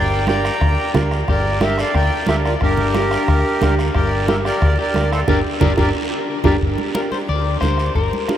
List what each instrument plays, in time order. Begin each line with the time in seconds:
Already playing: fingered electric bass G1, clean electric guitar A#4, accordion D5 G5
0.27 upright piano D4 G4 A#4, clean electric guitar D5, accordion G5 A#5, bombo rim, high conga, short guiro
0.45 bombo rim, short guiro
0.61 fingered electric bass D2, bombo low, bombo rim, high conga, long guiro
0.94 fingered electric bass D2, upright piano D4 G4 A#4, bombo low, bombo rim, high conga, low conga, short guiro
1.11 bombo rim, short guiro
1.28 fingered electric bass G1, clean electric guitar G4, accordion A#4 D5, bombo low, bombo rim, high conga, long guiro
1.60 upright piano D4 G4 A#4, clean electric guitar G4, accordion A#4 E5, bombo rim, high conga, short guiro
1.78 clean electric guitar A4, accordion D5 F5, bombo rim, short guiro
1.94 fingered electric bass D2, clean electric guitar A#4, accordion D5 G5, bombo low, bombo rim, high conga, long guiro
2.27 fingered electric bass D2, upright piano D4 G4 A#4, clean electric guitar G4, accordion A#4 E5, bombo rim, high conga, short guiro
2.45 clean electric guitar F4, accordion A#4 D5, bombo rim, short guiro
2.61 fingered electric bass G1, clean electric guitar D4, accordion G4 A#4, bombo low, bombo rim, high conga, long guiro
2.77 low conga
2.94 upright piano D4 G4 A#4, bombo rim, high conga, short guiro
3.11 bombo rim, short guiro
3.28 fingered electric bass D2, bombo low, bombo rim, high conga, long guiro
3.62 fingered electric bass D2, upright piano D4 G4 A#4, bombo low, bombo rim, high conga, low conga, short guiro
3.79 bombo rim, short guiro
3.95 fingered electric bass G1, clean electric guitar G4, accordion A#4 D5, bombo low, bombo rim, high conga, long guiro
4.28 upright piano D4 G4 A#4, clean electric guitar G4, accordion A#4 E5, bombo rim, high conga, short guiro
4.45 clean electric guitar G4, accordion A#4 D5, bombo rim, short guiro
4.62 fingered electric bass D2, bombo low, bombo rim, high conga, long guiro
4.79 clean electric guitar G4, accordion A#4 D5
4.94 fingered electric bass D2, upright piano D4 G4 A#4, bombo rim, high conga, short guiro
5.11 clean electric guitar E4, accordion A4 C5, bombo rim, short guiro
5.28 fingered electric bass G1, upright piano D4 G4 A#4, clean electric guitar D4 G4 A#4, accordion G4 A#4 D5, bombo low, low conga, long guiro
5.61 fingered electric bass G1, upright piano D4 G4 A#4, clean electric guitar D4 G4 A#4, accordion G4 A#4 D5, bombo low, low conga, long guiro
5.77 fingered electric bass G1, upright piano D4 G4 A#4, clean electric guitar D4 G4 A#4, accordion G4 A#4 D5, bombo low, low conga, long guiro
6.44 fingered electric bass G1, clean electric guitar D4 G4 A#4, upright piano D4 G4 A#4, accordion G4 A#4 D5, bombo low, low conga, long guiro
6.61 fingered electric bass G1, bombo low, high conga, long guiro
6.78 high conga
6.95 upright piano D4 G4 A#4, clean electric guitar A#4, bombo rim, high conga, short guiro
7.12 clean electric guitar C5, high conga, short guiro
7.29 fingered electric bass D2, clean electric guitar D5, high conga, long guiro
7.61 fingered electric bass D2, upright piano D4 G4 A#4, clean electric guitar C5, bombo low, bombo rim, high conga, short guiro
7.78 bombo rim, short guiro
7.95 fingered electric bass G1, clean electric guitar A#4, bombo low, high conga, long guiro
8.13 high conga
8.28 upright piano D4 G4 A#4, bombo rim, high conga, short guiro